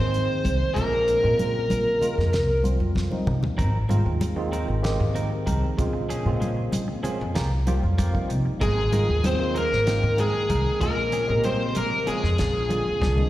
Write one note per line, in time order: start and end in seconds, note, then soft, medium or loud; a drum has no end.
0.00 0.27 G#2 medium
0.00 0.76 D#3 medium
0.00 0.75 G#3 medium
0.00 0.75 A#3 medium
0.00 0.71 C4 medium
0.00 0.76 C4 medium
0.00 0.76 G#4 medium
0.00 0.78 C5 loud
0.14 closed hi-hat medium
0.45 0.59 C2 medium
0.45 kick medium
0.45 closed hi-hat medium
0.45 high conga medium
0.74 1.26 A#1 medium
0.74 1.20 C#3 medium
0.74 1.21 G#3 medium
0.74 2.60 A#3 medium
0.74 1.21 A#3 medium
0.74 1.21 C4 medium
0.74 1.21 F4 medium
0.74 2.59 A#4 medium
0.74 kick loud
0.74 closed hi-hat medium
0.74 muted conga soft
1.08 closed hi-hat medium
1.08 muted conga soft
1.22 1.65 A#2 medium
1.22 1.96 C#3 medium
1.22 1.96 G#3 medium
1.22 1.97 A#3 medium
1.22 1.97 C4 medium
1.22 1.97 F4 medium
1.39 closed hi-hat medium
1.39 muted conga soft
1.39 high conga medium
1.70 1.85 A#1 medium
1.70 closed hi-hat medium
1.70 high conga medium
2.00 2.32 C#3 medium
2.00 2.33 G#3 medium
2.00 2.33 A#3 medium
2.00 2.33 C4 medium
2.00 2.33 F4 medium
2.00 muted upright bass stroke soft
2.00 closed hi-hat medium
2.00 low conga medium
2.18 2.31 F2 medium
2.18 snare soft
2.33 2.75 C2 loud
2.33 snare loud
2.33 closed hi-hat medium
2.33 muted conga soft
2.63 3.08 F3 medium
2.63 3.08 G3 medium
2.63 3.09 A#3 medium
2.63 3.09 C4 medium
2.63 3.09 F4 medium
2.63 closed hi-hat medium
2.63 high conga medium
2.80 3.08 F2 medium
2.80 high conga soft
2.95 kick medium
2.95 snare medium
2.95 high conga soft
3.11 3.58 F3 medium
3.11 3.58 G3 medium
3.11 3.58 A#3 medium
3.11 3.58 C4 medium
3.11 3.59 D#4 medium
3.11 high conga medium
3.27 3.41 C3 medium
3.27 mid tom medium
3.27 low conga medium
3.43 muted upright bass stroke soft
3.43 floor tom medium
3.43 low conga medium
3.57 3.87 G#1 medium
3.57 3.77 F3 medium
3.57 3.77 C4 medium
3.57 3.77 D#4 medium
3.57 3.77 A#4 medium
3.57 kick loud
3.57 closed hi-hat medium
3.57 muted conga soft
3.88 4.04 G#1 medium
3.88 4.34 D#3 medium
3.88 4.06 F3 medium
3.88 4.34 G#3 medium
3.88 4.34 A#3 medium
3.88 4.05 C4 medium
3.88 4.35 C4 medium
3.88 4.04 D#4 medium
3.88 4.35 F4 medium
3.88 4.04 A#4 medium
3.88 closed hi-hat soft
3.88 muted conga soft
3.88 high conga medium
4.05 4.62 D#2 medium
4.05 muted clean electric guitar stroke soft
4.21 muted clean electric guitar stroke soft
4.21 closed hi-hat medium
4.21 high conga medium
4.36 4.81 D#3 medium
4.36 4.81 G#3 medium
4.36 4.81 A#3 medium
4.36 4.81 C4 medium
4.36 4.81 F4 loud
4.36 muted clean electric guitar stroke soft
4.52 4.69 F3 medium
4.52 4.68 C4 medium
4.52 4.67 D#4 medium
4.52 4.67 A#4 medium
4.52 closed hi-hat medium
4.68 5.02 G#1 medium
4.68 muted clean electric guitar stroke soft
4.82 5.77 D#3 medium
4.82 5.76 G#3 medium
4.82 5.77 A#3 medium
4.82 5.77 C4 medium
4.82 5.78 G4 loud
4.82 snare loud
4.82 closed hi-hat medium
4.82 muted conga soft
5.00 5.28 G#2 medium
5.00 muted clean electric guitar stroke soft
5.14 5.31 F3 medium
5.14 5.31 C4 medium
5.14 5.30 D#4 medium
5.14 5.30 A#4 medium
5.14 closed hi-hat medium
5.31 muted clean electric guitar stroke soft
5.46 5.61 C2 medium
5.46 5.66 F3 medium
5.46 5.66 C4 medium
5.46 5.66 D#4 medium
5.46 5.66 A#4 medium
5.46 kick medium
5.46 closed hi-hat medium
5.46 high conga medium
5.77 6.27 A#1 medium
5.77 6.23 C#3 medium
5.77 6.23 G#3 medium
5.77 6.23 A#3 medium
5.77 6.23 C4 medium
5.77 6.23 F4 loud
5.77 muted clean electric guitar stroke soft
5.77 kick loud
5.77 closed hi-hat medium
5.77 muted conga soft
5.93 muted clean electric guitar stroke medium
6.09 6.29 F3 medium
6.09 6.29 C4 medium
6.09 6.29 C#4 medium
6.09 6.29 G#4 medium
6.09 closed hi-hat medium
6.09 muted conga soft
6.25 6.67 A#2 medium
6.25 6.99 C#3 loud
6.25 6.99 G#3 medium
6.25 7.00 A#3 medium
6.25 7.00 C4 medium
6.25 7.00 F4 loud
6.40 6.57 F3 medium
6.40 6.56 C4 medium
6.40 6.56 C#4 medium
6.40 6.55 G#4 medium
6.40 closed hi-hat soft
6.40 muted conga soft
6.40 high conga medium
6.57 muted clean electric guitar stroke medium
6.72 6.87 A#1 medium
6.72 muted clean electric guitar stroke soft
6.72 closed hi-hat medium
6.72 high conga medium
6.88 muted clean electric guitar stroke soft
7.03 7.35 C#3 medium
7.03 7.20 F3 medium
7.03 7.35 G#3 medium
7.03 7.36 A#3 medium
7.03 7.19 C4 medium
7.03 7.36 C4 medium
7.03 7.19 C#4 medium
7.03 7.36 F4 medium
7.03 7.19 G#4 medium
7.03 7.33 G#5 medium
7.03 muted upright bass stroke soft
7.03 closed hi-hat medium
7.03 low conga medium
7.20 7.34 F2 loud
7.20 muted clean electric guitar stroke soft
7.35 7.78 C2 medium
7.35 7.51 F3 medium
7.35 7.51 A#3 medium
7.35 7.51 F4 medium
7.35 7.50 G4 medium
7.35 7.65 A#5 medium
7.35 snare loud
7.35 closed hi-hat medium
7.35 muted conga soft
7.52 muted clean electric guitar stroke soft
7.66 8.11 F3 medium
7.66 7.83 F3 medium
7.66 8.12 G3 medium
7.66 8.12 A#3 medium
7.66 7.82 A#3 medium
7.66 8.12 C4 medium
7.66 7.82 F4 medium
7.66 8.12 F4 loud
7.66 7.82 G4 medium
7.66 7.82 G5 medium
7.66 closed hi-hat medium
7.66 high conga medium
7.83 8.11 F2 medium
7.83 7.97 F5 medium
7.83 muted clean electric guitar stroke soft
7.98 8.17 F3 medium
7.98 8.18 A#3 medium
7.98 8.18 F4 medium
7.98 8.18 G4 medium
7.98 8.28 F5 medium
7.98 kick medium
7.98 closed hi-hat medium
7.98 high conga medium
8.13 8.61 F3 medium
8.13 8.61 G3 medium
8.13 8.61 A#3 medium
8.13 8.61 C4 medium
8.13 8.61 D#4 medium
8.13 kick medium
8.29 8.44 C3 medium
8.29 8.59 C5 medium
8.29 muted clean electric guitar stroke soft
8.29 closed hi-hat medium
8.29 muted conga soft
8.46 muted clean electric guitar stroke soft
8.46 muted upright bass stroke soft
8.60 8.89 G#1 loud
8.60 8.80 F3 medium
8.60 9.21 G#3 medium
8.60 8.80 C4 medium
8.60 8.80 D#4 medium
8.60 9.26 G#4 medium
8.60 8.80 A#4 medium
8.60 kick loud
8.60 closed hi-hat medium
8.91 9.07 G#1 medium
8.91 9.37 D#3 medium
8.91 9.08 F3 medium
8.91 9.37 G#3 medium
8.91 9.37 A#3 medium
8.91 9.08 C4 medium
8.91 9.38 C4 medium
8.91 9.07 D#4 medium
8.91 9.38 F4 medium
8.91 9.07 A#4 medium
8.91 closed hi-hat medium
8.91 muted conga soft
8.91 high conga medium
9.08 9.65 D#2 medium
9.08 muted clean electric guitar stroke soft
9.23 9.55 C4 medium
9.23 9.54 C5 loud
9.23 muted clean electric guitar stroke soft
9.23 closed hi-hat medium
9.23 high conga medium
9.39 9.83 D#3 medium
9.39 9.84 G#3 medium
9.39 9.84 A#3 medium
9.39 9.84 C4 medium
9.39 9.84 F4 medium
9.39 muted clean electric guitar stroke soft
9.54 9.71 F3 medium
9.54 10.16 A#3 medium
9.54 9.71 C4 medium
9.54 9.70 D#4 medium
9.54 9.70 A#4 medium
9.54 10.20 A#4 medium
9.54 closed hi-hat medium
9.71 10.05 G#1 medium
9.71 muted clean electric guitar stroke soft
9.71 snare soft
9.86 10.81 D#3 medium
9.86 10.80 G#3 medium
9.86 10.80 A#3 medium
9.86 10.80 C4 medium
9.86 10.82 G5 medium
9.86 snare loud
9.86 closed hi-hat medium
10.03 10.31 G#2 medium
10.03 muted clean electric guitar stroke soft
10.17 10.34 F3 medium
10.17 10.78 G#3 medium
10.17 10.34 C4 medium
10.17 10.34 D#4 medium
10.17 10.78 G#4 medium
10.17 10.33 A#4 medium
10.17 closed hi-hat medium
10.35 muted clean electric guitar stroke soft
10.49 10.64 C2 medium
10.49 10.69 F3 medium
10.49 10.69 C4 medium
10.49 10.69 D#4 medium
10.49 10.69 A#4 medium
10.49 kick medium
10.49 closed hi-hat medium
10.49 high conga medium
10.81 11.31 A#1 medium
10.81 11.26 C#3 medium
10.81 11.26 G#3 medium
10.81 11.26 A#3 medium
10.81 11.41 A#3 medium
10.81 11.26 C4 medium
10.81 11.27 F4 medium
10.81 11.40 A#4 medium
10.81 muted clean electric guitar stroke soft
10.81 kick loud
10.81 closed hi-hat medium
10.81 muted conga soft
10.98 muted clean electric guitar stroke soft
11.12 11.32 F3 medium
11.12 11.32 C4 medium
11.12 11.32 C#4 medium
11.12 11.32 G#4 medium
11.12 closed hi-hat medium
11.12 muted conga soft
11.28 11.71 A#2 medium
11.28 12.02 C#3 medium
11.28 12.02 G#3 medium
11.28 12.02 A#3 medium
11.28 12.02 C4 medium
11.28 12.02 G4 medium
11.44 11.60 F3 medium
11.44 11.59 C4 medium
11.44 11.74 C4 medium
11.44 11.59 C#4 medium
11.44 11.58 G#4 medium
11.44 11.77 C5 medium
11.44 closed hi-hat medium
11.44 muted conga soft
11.44 high conga medium
11.59 muted clean electric guitar stroke soft
11.75 11.91 A#1 medium
11.75 12.06 A#3 medium
11.75 12.05 A#4 medium
11.75 muted clean electric guitar stroke soft
11.75 closed hi-hat medium
11.75 high conga medium
11.91 muted clean electric guitar stroke soft
12.05 12.37 C#3 medium
12.05 12.23 F3 medium
12.05 12.38 G#3 medium
12.05 12.38 A#3 medium
12.05 12.38 C4 medium
12.05 12.22 C4 medium
12.05 12.22 C#4 medium
12.05 12.38 F4 medium
12.05 13.29 G#4 medium
12.05 12.22 G#4 medium
12.05 muted upright bass stroke soft
12.05 closed hi-hat medium
12.09 13.29 G#3 medium
12.23 12.37 F2 loud
12.23 muted clean electric guitar stroke soft
12.23 snare soft
12.38 12.81 A#1 medium
12.38 12.55 F3 medium
12.38 12.54 A#3 medium
12.38 12.53 D4 medium
12.38 12.53 G#4 medium
12.38 snare loud
12.38 closed hi-hat medium
12.38 muted conga soft
12.54 muted clean electric guitar stroke soft
12.68 13.14 D3 medium
12.68 12.86 F3 soft
12.68 13.14 G#3 medium
12.68 13.14 A#3 medium
12.68 12.85 A#3 medium
12.68 13.14 C4 medium
12.68 12.85 D4 medium
12.68 13.14 F4 medium
12.68 12.85 G#4 medium
12.68 closed hi-hat medium
12.68 high conga medium
12.86 13.01 D2 medium
12.86 muted clean electric guitar stroke soft
13.01 13.29 C2 medium
13.01 13.20 F3 medium
13.01 13.21 A#3 medium
13.01 13.21 D4 medium
13.01 13.21 G#4 medium
13.01 kick medium
13.01 snare medium
13.01 high conga soft
13.17 13.29 D3 medium
13.17 13.29 G#3 medium
13.17 13.29 A#3 medium
13.17 13.29 C4 medium
13.17 13.29 D4 medium
13.17 high conga medium